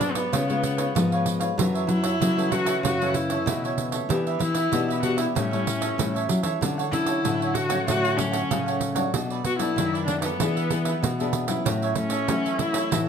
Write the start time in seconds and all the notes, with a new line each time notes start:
Already playing: G#2 G#3 D4
0.00 F#3 B3 D4 F#4 G#4 B4 D5, pandeiro
0.12 B3 B4 D5, pandeiro
0.17 G#4
0.32 C#3 G#3 B3 F4 B4 C#5 F5, pandeiro
0.48 G#3 B3 F4 B4 C#5 F5, pandeiro
0.62 muted cavaquinho stroke, pandeiro
0.77 B4 C#5 F5, pandeiro
0.95 G#2 F3 G#3 B3 F4, pandeiro
1.12 B4 C#5 F5, pandeiro
1.26 pandeiro
1.40 B4 C#5 F5, pandeiro
1.57 F#2 E3 F#3 A3 C#4 F#4 A4 C#5 E5, pandeiro
1.74 A4 C#5 E5, pandeiro
1.87 F#3 E4, muted cavaquinho stroke, pandeiro
2.02 A4 C#5 E5, pandeiro
2.20 C#3 E3 F#3 A3 C#4 F#4 A4 C#5 E5, pandeiro
2.37 E3 A3 C#4 A4 C#5 E5, pandeiro
2.51 E3 A3 C#4 F#4 A4 C#5 E5, pandeiro
2.65 A4 C#5 E5, pandeiro
2.83 F#2 C#3 F#4 A4 C#5 E5, pandeiro
3.01 E3 A3 C#4 A4 C#5 E5, pandeiro
3.14 E4, muted cavaquinho stroke, pandeiro
3.30 A4 C#5 E5, pandeiro
3.46 B2 C#3 E3 A3 C#4, pandeiro
3.64 A4 C#5 E5, pandeiro
3.78 pandeiro
3.91 A4 C#5 E5, pandeiro
4.09 E3 B3 D4 G4 B4 E5, pandeiro
4.27 G4 B4 E5, pandeiro
4.39 E3 E4, muted cavaquinho stroke, pandeiro
4.55 G4 B4 E5, pandeiro
4.72 B2 B3 D4 G4 B4 E5, pandeiro
4.88 G4 B4 E5, pandeiro
5.02 B3 D4 F#4 G4 B4 E5, pandeiro
5.17 E4 G4 B4 E5, pandeiro
5.35 A2 G3 C#4 E4 G4 A4 C#5 E5, pandeiro
5.51 G3 C#4 E4 A4 C#5 E5, pandeiro
5.65 muted cavaquinho stroke, pandeiro
5.81 A4 C#5 E5, pandeiro
5.98 A2 E3 G3 C#4 E4, pandeiro
6.14 A4 C#5 E5, pandeiro
6.29 F#3, pandeiro
6.43 E3 A4 C#5 E5, pandeiro
6.61 D3 F#3 A3 C#4 D4 A4 C#5 F#5, pandeiro
6.78 A4 C#5 F#5, pandeiro
6.91 D3 F#3 A3 C#4 E4, muted cavaquinho stroke, pandeiro
7.06 A4 C#5 F#5, pandeiro
7.24 A2 D3 F#3 A3 C#4 D4 A4 C#5 F#5, pandeiro
7.41 A4 C#5 F#5, pandeiro
7.54 D4 F#4 A4 C#5 F#5, pandeiro
7.69 F#3 A3 C#4 A4 C#5 F#5, pandeiro
7.87 A2 D3 D4 F#4 A4 C#5 F#5, pandeiro
8.04 A4 C#5 F#5, pandeiro
8.16 F#3 C#4, muted cavaquinho stroke, pandeiro
8.21 A3 C#4
8.31 A4 C#5 F#5, pandeiro
8.51 A2 C#3 F#3 A3 C#4, pandeiro
8.66 A4 C#5 F#5, pandeiro
8.81 pandeiro
8.95 F#3 A3 D4 A4 C#5 F#5, pandeiro
9.13 B2 D4 A4 B4 D5, pandeiro
9.30 A4 B4 D5, pandeiro
9.44 B3 F#4, muted cavaquinho stroke, pandeiro
9.59 F#3 A3 D4 E4 A4 B4 D5, pandeiro
9.76 F#2 D#3 D4 A4 B4 D5, pandeiro
9.93 A4 B4 D5, pandeiro
10.06 F#3 A3 D4 A4 B4 D5, pandeiro
10.21 B3 A4 B4 D5, pandeiro
10.39 E3 B3 D4 G#4 B4 E5, pandeiro
10.56 G#4 B4 E5, pandeiro
10.70 B3 D4 G#4, muted cavaquinho stroke, pandeiro
10.85 G#4 B4 E5, pandeiro
11.03 B2, pandeiro
11.19 B3 D4 G#4 B4 E5, pandeiro
11.33 pandeiro
11.48 F#3 C#4 E4 G#4 B4 E5, pandeiro
11.65 A2 F#4 A4 C#5 E5, pandeiro
11.82 A4 C#5 E5, pandeiro
11.95 A3 C#4, muted cavaquinho stroke, pandeiro
12.10 A4 C#5 E5, pandeiro
12.28 E3 F#3 A3 C#4 E4 F#4 A4 C#5 E5, pandeiro
12.45 A4 C#5 E5, pandeiro
12.58 F#3 C#4 E4 F#4 A4 C#5 E5, pandeiro
12.73 A4 C#5 E5, pandeiro
12.90 A2 E3 F#4 A4 C#5 E5, pandeiro